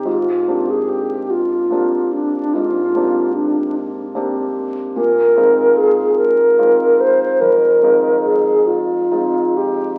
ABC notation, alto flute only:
X:1
M:12/8
L:1/16
Q:3/8=48
K:Bbdor
V:1 name="Alto flute"
F3 A G2 F4 =D2 F4 D2 z6 | B4 A2 B4 c2 B4 A2 F4 G2 |]